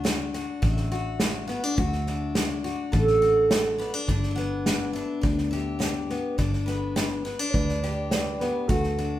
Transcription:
Already playing: D2 D4 F#4
0.04 A3 D5, snare, hi-hat pedal
0.34 F#4, snare
0.62 A1 A2 E5, kick, snare
0.77 snare
0.91 F#4, snare
1.20 A3, snare, hi-hat pedal
1.48 B3 F#5, snare
1.64 D4
1.77 D2 D3 F#4 E5, kick, snare
1.92 snare
2.06 D4, snare
2.35 A3 D5, snare, hi-hat pedal
2.64 F#4, snare
2.92 A1 A2 A4, kick, snare
3.07 snare
3.22 F#4, snare
3.51 A3, snare, hi-hat pedal
3.78 B3 D5, snare
3.94 D4
4.07 G1 G2 D4 D5, kick, snare
4.23 snare
4.31 E5
4.36 B3 F#5, snare
4.66 D3, snare, hi-hat pedal
4.93 D4 E5, snare
5.21 D2 G2 D5, kick, snare
5.38 snare
5.51 G4 E5, snare
5.79 D3 D5, snare, hi-hat pedal
6.10 B3, snare
6.38 G1 G2 D4 D5, kick, snare
6.53 snare
6.66 B3 B4, snare
6.96 D3, snare, hi-hat pedal
7.25 B3, snare
7.39 D4
7.50 B4 C#5
7.54 D2 G2 D5, kick, snare
7.68 snare
7.82 G4 B4 D5, snare
8.11 D3 B4 D5, snare, hi-hat pedal
8.39 B3 G4 B4, snare
8.67 D2 D3 F#4 A4, kick, snare
8.83 snare
8.98 D4, snare

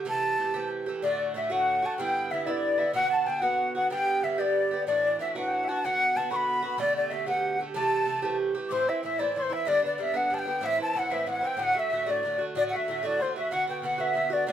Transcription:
0.05 C3 E3 A3 G4
0.09 A5
0.38 C3 E3 A3 G4
0.54 C3 E3 A3 G4
0.86 E3 A3 G4
1.02 A2 D3 A3 F#4 D5
1.34 A2 D3 A3 F#4 E5
1.50 A2 D3 A3 F#4 F#5
1.82 D3 A3 F#4 A5
1.98 G2 D3 B3 E4 G5
2.30 G2 D3 B3 E4 E5
2.46 G2 D3 B3 E4 D5 E5
2.51 D5
2.78 D3 B3 E4 E5
2.93 B2 D3 B3 F#4 F#5
3.10 A5
3.26 B2 D3 B3 F#4 G5
3.40 D3 B3 F#4 F#5
3.44 B2
3.75 D3 B3 F#4 F#5
3.90 G2 D3 B3 G4 G5
4.22 G2 D3 B3 G4 E5
4.38 G2 D3 B3 G4 D5
4.71 D3 B3 G4
4.87 A2 E3 D4 F#4 D5
5.05 D5
5.19 A2 E3 D4 F#4 E5
5.35 A2 E3 D4 F#4 F#5
5.48 G5
5.54 F#5
5.64 E5 F#5 A5
5.69 E3 D4 F#4
5.82 B2 D3 B3 F#4 F#5
6.15 B2 D3 B3 F#4 A5
6.30 B2 D3 B3 F#4 B5 C#6
6.36 B5
6.62 D3 B3 F#4
6.78 B2 D3 A3 G4 D5
6.96 D5
7.10 B2 D3 A3 G4 E5
7.26 B2 D3 A3 G4 F#5
7.59 D3 A3 G4
7.74 C3 E3 A3 G4 A5
8.06 C3 E3 A3 G4
8.22 C3 E3 A3 G4
8.55 E3 A3 G4
8.69 A2 E3 C4 C5 C6 D6
8.73 E4
8.88 E3 C4 E4 E5
9.03 A2 E3 C4 E4 E5
9.19 A2 E3 C4 E4 D5
9.35 A2 E3 C4 E4 C5 C6
9.50 E3 C4 E4 E5
9.65 G2 D3 B3 D4 D5
9.82 D3 B3 D4 D5
9.98 G2 D3 B3 D4 E5
10.14 G2 D3 B3 D4 F#5
10.30 G2 D3 B3 D4 G5 A5
10.39 G5
10.45 D3 B3 D4
10.61 A2 E3 C4 E4 E5
10.66 E5
10.78 E3 C4 E4 A5
10.83 A5
10.94 A2 E3 C4 E4 F#5
10.99 F#5
11.08 E3 C4 E4 E5 F#5
11.12 A2 E5
11.26 A2 E3 C4 E4 F#5
11.32 F#5
11.41 E3 C4 E4 G5
11.47 G5
11.54 A2 D3 F#5 G5
11.59 A3 F#4
11.63 F#5
11.74 A3 F#4 E5
11.78 D3 E5
11.90 A2 D3 A3 F#4
12.05 A2 D3 A3 F#4 D5
12.10 D5
12.23 A2 D3 A3
12.27 F#4
12.38 D3 A3 F#4
12.55 A2 D3 A3 F#4 D5
12.70 F#4 E5 F#5
12.74 D3 A3 E5
12.87 A2 D3 A3 E5
12.91 F#4
13.03 A2 D3 A3 F#4 D5
13.20 A2 D3 A3 C5 C6
13.24 F#4
13.36 D3 A3 F#4 E5
13.51 B2 D3 B3 F#4 F#5
13.68 D3 B3 F#4 G5
13.82 B2 D3 B3 F#4 F#5
13.98 B2 D3 B3 F#4 E5
14.14 B2 D3 B3 F#4
14.30 D3 B3 F#4 D5
14.47 A2 D3 A3 F#4 D5

